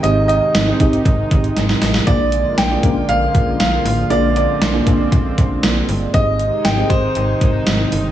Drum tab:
HH |x-x-x-xxx-xxx-o-|x-x-x-x-x-x-x-o-|x-x-x-x-x-x-x-o-|x-x-x-x-x-x-x-o-|
TB |----x-----------|----x-------x---|----x-------x---|----x-------x---|
SD |----o-------oooo|----o-------o---|----o-------o---|----o-------o---|
BD |------o-o-o-----|o-----o---o-----|------o-o-o-----|o-----o---o-----|